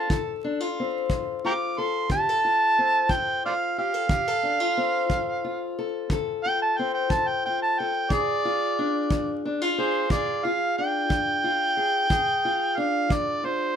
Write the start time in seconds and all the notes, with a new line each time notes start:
Already playing: C4 F4 A4 A5
0.10 D3 A4, kick
0.44 D4
0.60 F4
0.80 C4
1.10 F3, kick
1.44 F4 G5 A#5 D6
1.78 A4 C6
2.10 D3 G4 A5, kick
2.29 A4
2.45 F4
2.78 C4
3.09 F3 G5, kick
3.45 F4 C5 D5 F5
3.78 G4 F5
3.94 A4
4.09 D3 G4, kick
4.28 A4
4.43 D4
4.60 F4
4.77 C4
5.10 F3, kick
5.44 F4
5.79 A4
6.10 D3 A4, kick
6.44 F4 G5
6.62 A5
6.77 C4 G5
6.94 G5
7.10 F3 A5, kick
7.27 G5
7.45 F4 G5
7.62 A5
7.79 A4 G5
8.10 A#2 G#4 D5, kick
8.45 F4
8.79 D4
9.10 F3, kick
9.45 D4
9.62 F4
9.78 G#4 C5
10.10 A#2 G#4 D5, kick
10.45 F4 F5
10.78 D4 G5
11.09 F3, kick
11.44 F4
11.77 G#4
12.10 A#2 G#4, kick
12.45 F4
12.77 D4 F5
13.09 F3 D5, kick
13.44 F4 C5